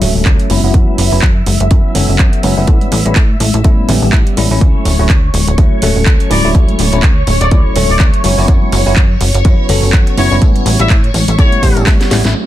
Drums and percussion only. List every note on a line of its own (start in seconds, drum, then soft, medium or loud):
0.01 open hi-hat loud
0.01 tambourine medium
0.01 high conga medium
0.01 low conga medium
0.16 tambourine medium
0.25 kick loud
0.25 clap loud
0.40 closed hi-hat medium
0.50 open hi-hat loud
0.50 tambourine loud
0.50 high conga medium
0.64 tambourine soft
0.74 kick loud
0.74 closed hi-hat medium
0.88 high conga medium
0.98 open hi-hat loud
0.98 tambourine medium
1.13 tambourine medium
1.22 kick loud
1.22 clap loud
1.46 open hi-hat loud
1.46 tambourine medium
1.46 high conga medium
1.60 closed hi-hat soft
1.60 tambourine soft
1.71 kick loud
1.71 closed hi-hat medium
1.95 open hi-hat loud
1.95 tambourine medium
1.95 high conga medium
1.95 low conga medium
2.09 tambourine soft
2.19 kick loud
2.19 clap loud
2.19 closed hi-hat medium
2.33 closed hi-hat soft
2.43 open hi-hat loud
2.43 tambourine medium
2.43 high conga medium
2.57 tambourine soft
2.67 kick loud
2.67 closed hi-hat medium
2.81 closed hi-hat soft
2.81 high conga medium
2.92 open hi-hat loud
2.92 tambourine medium
3.06 closed hi-hat soft
3.06 tambourine soft
3.16 kick loud
3.16 clap loud
3.16 closed hi-hat medium
3.40 open hi-hat loud
3.40 tambourine medium
3.40 high conga medium
3.54 closed hi-hat soft
3.54 tambourine soft
3.64 kick loud
3.64 closed hi-hat medium
3.64 tambourine soft
3.88 open hi-hat loud
3.88 tambourine medium
3.88 high conga medium
3.88 low conga medium
4.02 tambourine medium
4.13 kick loud
4.13 clap loud
4.13 closed hi-hat medium
4.27 closed hi-hat soft
4.37 open hi-hat loud
4.37 tambourine medium
4.37 high conga medium
4.52 tambourine soft
4.61 kick loud
4.61 closed hi-hat medium
4.61 tambourine soft
4.75 high conga medium
4.85 open hi-hat loud
4.85 tambourine medium
4.99 tambourine medium
5.09 kick loud
5.09 clap loud
5.09 closed hi-hat medium
5.34 open hi-hat loud
5.34 tambourine medium
5.34 high conga medium
5.48 closed hi-hat soft
5.48 tambourine medium
5.58 kick loud
5.58 closed hi-hat medium
5.58 tambourine soft
5.82 open hi-hat loud
5.82 tambourine medium
5.82 high conga medium
5.82 low conga medium
5.96 tambourine soft
6.06 kick loud
6.06 clap loud
6.06 closed hi-hat medium
6.20 closed hi-hat medium
6.31 open hi-hat loud
6.31 tambourine medium
6.31 high conga medium
6.44 tambourine soft
6.55 kick loud
6.55 closed hi-hat medium
6.55 tambourine soft
6.68 closed hi-hat soft
6.68 high conga medium
6.79 open hi-hat loud
6.79 tambourine medium
6.93 closed hi-hat soft
6.93 tambourine medium
7.03 kick loud
7.03 clap loud
7.03 closed hi-hat medium
7.27 open hi-hat loud
7.27 tambourine medium
7.27 high conga medium
7.41 closed hi-hat medium
7.41 tambourine medium
7.51 kick loud
7.51 closed hi-hat medium
7.76 open hi-hat loud
7.76 tambourine medium
7.76 high conga medium
7.76 low conga medium
7.89 tambourine medium
7.99 kick loud
7.99 clap loud
7.99 closed hi-hat medium
8.14 closed hi-hat medium
8.24 open hi-hat loud
8.24 tambourine medium
8.24 high conga medium
8.38 tambourine soft
8.48 kick loud
8.48 closed hi-hat medium
8.62 high conga medium
8.72 open hi-hat loud
8.72 tambourine medium
8.86 tambourine soft
8.96 kick loud
8.96 clap loud
8.96 closed hi-hat medium
8.96 tambourine soft
9.21 open hi-hat loud
9.21 tambourine medium
9.21 high conga medium
9.34 closed hi-hat medium
9.34 tambourine soft
9.45 kick loud
9.45 closed hi-hat medium
9.45 tambourine soft
9.69 open hi-hat loud
9.69 tambourine medium
9.69 high conga medium
9.69 low conga medium
9.83 tambourine medium
9.93 kick loud
9.93 clap loud
9.93 closed hi-hat medium
10.07 closed hi-hat medium
10.18 open hi-hat loud
10.18 tambourine medium
10.18 high conga medium
10.32 tambourine medium
10.42 kick loud
10.42 closed hi-hat medium
10.42 tambourine soft
10.56 closed hi-hat soft
10.56 high conga medium
10.66 open hi-hat loud
10.66 tambourine loud
10.79 closed hi-hat soft
10.79 tambourine medium
10.90 kick loud
10.90 clap loud
10.90 closed hi-hat medium
10.90 tambourine soft
11.04 closed hi-hat soft
11.14 open hi-hat loud
11.14 tambourine loud
11.14 high conga medium
11.28 closed hi-hat medium
11.28 tambourine medium
11.39 kick loud
11.39 closed hi-hat medium
11.39 tambourine soft
11.52 closed hi-hat soft
11.63 kick medium
11.63 open hi-hat loud
11.63 tambourine loud
11.63 high conga medium
11.63 low conga medium
11.77 closed hi-hat soft
11.77 tambourine soft
11.87 kick loud
11.87 snare medium
11.87 clap loud
11.87 closed hi-hat medium
11.87 tambourine soft
12.01 snare medium
12.01 closed hi-hat medium
12.11 snare medium
12.11 open hi-hat loud
12.11 tambourine loud
12.11 high conga medium
12.24 snare medium
12.24 closed hi-hat soft
12.24 tambourine medium